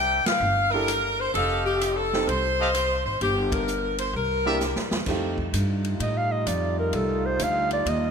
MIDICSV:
0, 0, Header, 1, 9, 480
1, 0, Start_track
1, 0, Tempo, 465224
1, 1392, Time_signature, 4, 2, 24, 8
1, 8366, End_track
2, 0, Start_track
2, 0, Title_t, "Clarinet"
2, 0, Program_c, 0, 71
2, 6205, Note_on_c, 0, 75, 79
2, 6369, Note_on_c, 0, 77, 88
2, 6385, Note_off_c, 0, 75, 0
2, 6517, Note_on_c, 0, 75, 77
2, 6532, Note_off_c, 0, 77, 0
2, 6675, Note_on_c, 0, 74, 72
2, 6690, Note_off_c, 0, 75, 0
2, 6994, Note_off_c, 0, 74, 0
2, 7006, Note_on_c, 0, 70, 75
2, 7173, Note_on_c, 0, 69, 75
2, 7189, Note_off_c, 0, 70, 0
2, 7488, Note_on_c, 0, 72, 79
2, 7503, Note_off_c, 0, 69, 0
2, 7669, Note_on_c, 0, 77, 90
2, 7684, Note_off_c, 0, 72, 0
2, 7968, Note_off_c, 0, 77, 0
2, 7974, Note_on_c, 0, 74, 88
2, 8136, Note_on_c, 0, 75, 79
2, 8152, Note_off_c, 0, 74, 0
2, 8366, Note_off_c, 0, 75, 0
2, 8366, End_track
3, 0, Start_track
3, 0, Title_t, "Trumpet section"
3, 0, Program_c, 1, 61
3, 0, Note_on_c, 1, 70, 75
3, 0, Note_on_c, 1, 72, 67
3, 0, Note_on_c, 1, 74, 69
3, 0, Note_on_c, 1, 76, 80
3, 211, Note_off_c, 1, 76, 0
3, 212, Note_off_c, 1, 70, 0
3, 212, Note_off_c, 1, 72, 0
3, 212, Note_off_c, 1, 74, 0
3, 1393, Note_on_c, 1, 69, 67
3, 1394, Note_on_c, 1, 67, 77
3, 1394, Note_on_c, 1, 75, 67
3, 1394, Note_on_c, 1, 77, 83
3, 2129, Note_off_c, 1, 67, 0
3, 2129, Note_off_c, 1, 69, 0
3, 2129, Note_off_c, 1, 75, 0
3, 2130, Note_off_c, 1, 77, 0
3, 2668, Note_on_c, 1, 67, 86
3, 2668, Note_on_c, 1, 69, 74
3, 2668, Note_on_c, 1, 75, 79
3, 2669, Note_on_c, 1, 77, 92
3, 2777, Note_off_c, 1, 67, 0
3, 2777, Note_off_c, 1, 69, 0
3, 2777, Note_off_c, 1, 75, 0
3, 2778, Note_off_c, 1, 77, 0
3, 4589, Note_on_c, 1, 76, 94
3, 4590, Note_on_c, 1, 72, 72
3, 4593, Note_on_c, 1, 70, 86
3, 4594, Note_on_c, 1, 74, 79
3, 4698, Note_off_c, 1, 76, 0
3, 4699, Note_off_c, 1, 72, 0
3, 4701, Note_off_c, 1, 70, 0
3, 4702, Note_off_c, 1, 74, 0
3, 8366, End_track
4, 0, Start_track
4, 0, Title_t, "Saxophone section"
4, 0, Program_c, 2, 65
4, 0, Note_on_c, 2, 79, 94
4, 242, Note_off_c, 2, 79, 0
4, 273, Note_on_c, 2, 77, 89
4, 736, Note_on_c, 2, 70, 90
4, 753, Note_off_c, 2, 77, 0
4, 1224, Note_off_c, 2, 70, 0
4, 1233, Note_on_c, 2, 72, 79
4, 1377, Note_on_c, 2, 69, 89
4, 1392, Note_off_c, 2, 72, 0
4, 1682, Note_off_c, 2, 69, 0
4, 1704, Note_on_c, 2, 67, 82
4, 2005, Note_off_c, 2, 67, 0
4, 2028, Note_on_c, 2, 69, 86
4, 2347, Note_on_c, 2, 72, 97
4, 2350, Note_off_c, 2, 69, 0
4, 3143, Note_off_c, 2, 72, 0
4, 3155, Note_on_c, 2, 72, 73
4, 3302, Note_off_c, 2, 72, 0
4, 3326, Note_on_c, 2, 67, 81
4, 3617, Note_off_c, 2, 67, 0
4, 3635, Note_on_c, 2, 70, 80
4, 4114, Note_off_c, 2, 70, 0
4, 4121, Note_on_c, 2, 72, 76
4, 4265, Note_off_c, 2, 72, 0
4, 4297, Note_on_c, 2, 70, 76
4, 5044, Note_off_c, 2, 70, 0
4, 8366, End_track
5, 0, Start_track
5, 0, Title_t, "Grand piano"
5, 0, Program_c, 3, 0
5, 761, Note_on_c, 3, 64, 49
5, 764, Note_on_c, 3, 62, 58
5, 767, Note_on_c, 3, 67, 54
5, 771, Note_on_c, 3, 69, 62
5, 900, Note_off_c, 3, 64, 0
5, 902, Note_off_c, 3, 62, 0
5, 903, Note_off_c, 3, 67, 0
5, 905, Note_off_c, 3, 69, 0
5, 2203, Note_on_c, 3, 60, 61
5, 2211, Note_on_c, 3, 63, 53
5, 2213, Note_on_c, 3, 67, 53
5, 2221, Note_on_c, 3, 69, 65
5, 2341, Note_off_c, 3, 60, 0
5, 2346, Note_off_c, 3, 63, 0
5, 2346, Note_off_c, 3, 67, 0
5, 2350, Note_off_c, 3, 69, 0
5, 4596, Note_on_c, 3, 58, 61
5, 4604, Note_on_c, 3, 64, 57
5, 4606, Note_on_c, 3, 62, 57
5, 4616, Note_on_c, 3, 67, 73
5, 4738, Note_off_c, 3, 58, 0
5, 4742, Note_off_c, 3, 64, 0
5, 4743, Note_off_c, 3, 62, 0
5, 4748, Note_off_c, 3, 67, 0
5, 5241, Note_on_c, 3, 57, 53
5, 5243, Note_on_c, 3, 60, 48
5, 5246, Note_on_c, 3, 63, 49
5, 5253, Note_on_c, 3, 65, 46
5, 5254, Note_on_c, 3, 67, 56
5, 5525, Note_off_c, 3, 57, 0
5, 5526, Note_off_c, 3, 60, 0
5, 5528, Note_off_c, 3, 63, 0
5, 5531, Note_off_c, 3, 65, 0
5, 5532, Note_off_c, 3, 67, 0
5, 8366, End_track
6, 0, Start_track
6, 0, Title_t, "Trombone section"
6, 0, Program_c, 4, 61
6, 5246, Note_on_c, 4, 65, 77
6, 5247, Note_on_c, 4, 57, 59
6, 5247, Note_on_c, 4, 63, 68
6, 5249, Note_on_c, 4, 55, 58
6, 8366, Note_off_c, 4, 55, 0
6, 8366, Note_off_c, 4, 57, 0
6, 8366, Note_off_c, 4, 63, 0
6, 8366, Note_off_c, 4, 65, 0
6, 8366, End_track
7, 0, Start_track
7, 0, Title_t, "Upright bass"
7, 0, Program_c, 5, 32
7, 0, Note_on_c, 5, 36, 77
7, 224, Note_off_c, 5, 36, 0
7, 413, Note_on_c, 5, 31, 84
7, 1341, Note_off_c, 5, 31, 0
7, 1383, Note_on_c, 5, 29, 78
7, 2306, Note_off_c, 5, 29, 0
7, 2345, Note_on_c, 5, 36, 89
7, 3108, Note_off_c, 5, 36, 0
7, 3152, Note_on_c, 5, 32, 68
7, 3301, Note_off_c, 5, 32, 0
7, 3312, Note_on_c, 5, 31, 83
7, 4231, Note_off_c, 5, 31, 0
7, 4263, Note_on_c, 5, 36, 85
7, 4866, Note_off_c, 5, 36, 0
7, 4910, Note_on_c, 5, 38, 58
7, 5060, Note_off_c, 5, 38, 0
7, 5072, Note_on_c, 5, 40, 61
7, 5214, Note_off_c, 5, 40, 0
7, 5220, Note_on_c, 5, 41, 71
7, 5692, Note_off_c, 5, 41, 0
7, 5708, Note_on_c, 5, 43, 84
7, 6176, Note_off_c, 5, 43, 0
7, 6187, Note_on_c, 5, 45, 80
7, 6655, Note_off_c, 5, 45, 0
7, 6669, Note_on_c, 5, 41, 86
7, 7136, Note_off_c, 5, 41, 0
7, 7146, Note_on_c, 5, 36, 82
7, 7615, Note_off_c, 5, 36, 0
7, 7632, Note_on_c, 5, 38, 85
7, 8098, Note_off_c, 5, 38, 0
7, 8106, Note_on_c, 5, 39, 81
7, 8366, Note_off_c, 5, 39, 0
7, 8366, End_track
8, 0, Start_track
8, 0, Title_t, "Muted upright bass strokes"
8, 264, Note_on_c, 9, 29, 36
8, 367, Note_off_c, 9, 29, 0
8, 8366, End_track
9, 0, Start_track
9, 0, Title_t, "Drums"
9, 269, Note_on_c, 9, 38, 80
9, 269, Note_on_c, 9, 51, 65
9, 373, Note_off_c, 9, 38, 0
9, 373, Note_off_c, 9, 51, 0
9, 908, Note_on_c, 9, 37, 58
9, 908, Note_on_c, 9, 44, 57
9, 908, Note_on_c, 9, 51, 71
9, 1011, Note_off_c, 9, 37, 0
9, 1011, Note_off_c, 9, 44, 0
9, 1011, Note_off_c, 9, 51, 0
9, 1392, Note_on_c, 9, 51, 53
9, 1495, Note_off_c, 9, 51, 0
9, 1871, Note_on_c, 9, 44, 55
9, 1871, Note_on_c, 9, 51, 64
9, 1974, Note_off_c, 9, 44, 0
9, 1974, Note_off_c, 9, 51, 0
9, 2200, Note_on_c, 9, 38, 47
9, 2304, Note_off_c, 9, 38, 0
9, 2358, Note_on_c, 9, 51, 56
9, 2461, Note_off_c, 9, 51, 0
9, 2831, Note_on_c, 9, 37, 60
9, 2831, Note_on_c, 9, 44, 54
9, 2831, Note_on_c, 9, 51, 68
9, 2934, Note_off_c, 9, 37, 0
9, 2934, Note_off_c, 9, 44, 0
9, 2934, Note_off_c, 9, 51, 0
9, 3311, Note_on_c, 9, 51, 55
9, 3415, Note_off_c, 9, 51, 0
9, 3631, Note_on_c, 9, 36, 82
9, 3633, Note_on_c, 9, 51, 70
9, 3734, Note_off_c, 9, 36, 0
9, 3736, Note_off_c, 9, 51, 0
9, 3792, Note_on_c, 9, 44, 55
9, 3896, Note_off_c, 9, 44, 0
9, 4110, Note_on_c, 9, 51, 68
9, 4213, Note_off_c, 9, 51, 0
9, 4751, Note_on_c, 9, 38, 45
9, 4751, Note_on_c, 9, 44, 60
9, 4854, Note_off_c, 9, 38, 0
9, 4854, Note_off_c, 9, 44, 0
9, 4910, Note_on_c, 9, 38, 56
9, 5013, Note_off_c, 9, 38, 0
9, 5068, Note_on_c, 9, 38, 79
9, 5171, Note_off_c, 9, 38, 0
9, 5221, Note_on_c, 9, 38, 33
9, 5221, Note_on_c, 9, 49, 67
9, 5225, Note_on_c, 9, 36, 67
9, 5324, Note_off_c, 9, 38, 0
9, 5324, Note_off_c, 9, 49, 0
9, 5329, Note_off_c, 9, 36, 0
9, 5548, Note_on_c, 9, 36, 55
9, 5651, Note_off_c, 9, 36, 0
9, 5711, Note_on_c, 9, 44, 60
9, 5711, Note_on_c, 9, 51, 72
9, 5814, Note_off_c, 9, 44, 0
9, 5814, Note_off_c, 9, 51, 0
9, 6030, Note_on_c, 9, 51, 46
9, 6133, Note_off_c, 9, 51, 0
9, 6192, Note_on_c, 9, 51, 61
9, 6295, Note_off_c, 9, 51, 0
9, 6671, Note_on_c, 9, 44, 56
9, 6671, Note_on_c, 9, 51, 60
9, 6774, Note_off_c, 9, 44, 0
9, 6774, Note_off_c, 9, 51, 0
9, 7147, Note_on_c, 9, 51, 55
9, 7250, Note_off_c, 9, 51, 0
9, 7629, Note_on_c, 9, 44, 52
9, 7629, Note_on_c, 9, 51, 67
9, 7732, Note_off_c, 9, 44, 0
9, 7732, Note_off_c, 9, 51, 0
9, 7950, Note_on_c, 9, 51, 47
9, 8054, Note_off_c, 9, 51, 0
9, 8113, Note_on_c, 9, 51, 61
9, 8216, Note_off_c, 9, 51, 0
9, 8366, End_track
0, 0, End_of_file